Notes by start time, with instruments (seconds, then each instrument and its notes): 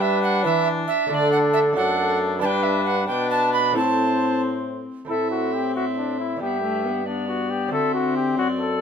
Already playing: trombone G3, lute B3 D4 G4, viola D4, cornet B4
0.01 recorder E5
0.23 recorder F#5
0.45 trombone E3, lute E3, recorder E5
0.88 recorder E5
1.07 trombone D3, lute D3 A3 D4 A4, viola D4, cornet A4, recorder E5
1.14 recorder D5
1.32 recorder F#5
1.53 recorder E5
1.73 lute F#2 A3 D4 A4, trombone F#2, viola D4, cornet A4, recorder F#5
2.39 trombone G2, lute G2 B3 D4 G4, viola D4, cornet B4, recorder A5
2.45 recorder G5
2.63 recorder E5
2.85 recorder F#5
3.08 trombone B2, lute B2, viola D4, cornet B4, recorder G5
3.31 recorder A5
3.53 recorder B5
3.71 lute A2 A3 C4 E4
3.76 trombone A2, viola C4, cornet C5, recorder A5
5.05 lute A3 C4 E4
5.09 lute A2, trombone A2, viola C4, cornet A4, recorder E5
5.31 cornet F#4
5.53 cornet G4
5.76 cornet F#4, recorder E5
5.97 cornet D4
6.19 cornet E4
6.36 lute G2 B3 D4 G4
6.41 trombone G2, viola B3, cornet G4, recorder E5
6.63 viola A3
6.84 viola B3
7.06 viola B3, cornet D4, recorder D5
7.28 cornet F#4
7.50 cornet G4
7.68 lute D3 C4 D4 F#4, viola C4
7.72 trombone D3, cornet A4, recorder E5
7.94 cornet F#4
8.17 cornet G4
8.37 lute F#2, trombone F#2, cornet F#4, recorder D5
8.60 cornet A4